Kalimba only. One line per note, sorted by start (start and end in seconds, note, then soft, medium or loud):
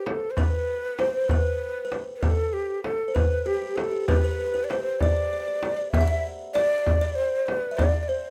0.00 0.37 B4 medium
0.38 0.96 B4 medium
0.99 1.23 C5 medium
1.24 1.31 C5 soft
1.31 1.84 B4 medium
1.85 1.99 B4 medium
2.23 3.11 A4 medium
3.08 3.15 C5 medium
3.15 3.47 B4 medium
3.46 3.53 G4 medium
3.54 3.61 G4 medium
3.62 3.68 G4 medium
3.69 3.75 G4 soft
3.76 3.82 G4 medium
3.84 3.90 G4 soft
3.92 3.99 G4 medium
4.09 4.15 B4 medium
4.16 4.23 B4 medium
4.24 4.30 B4 medium
4.31 4.38 B4 medium
4.39 4.45 B4 medium
4.47 4.53 B4 soft
4.54 4.61 B4 medium
4.71 5.02 C5 medium
5.03 5.09 D5 medium
5.10 5.16 D5 medium
5.17 5.24 D5 medium
5.25 5.32 D5 soft
5.33 5.39 D5 medium
5.40 5.47 D5 soft
5.48 5.54 D5 medium
5.55 5.61 D5 soft
5.62 5.68 D5 soft
5.69 5.75 D5 soft
5.77 5.84 D5 medium
5.94 6.00 E5 medium
6.01 6.08 F#5 medium
6.08 6.27 E5 medium
6.55 7.00 D5 medium
7.01 7.73 D5 medium
7.71 7.78 E5 medium
7.79 8.10 D5 medium
8.09 8.30 C5 medium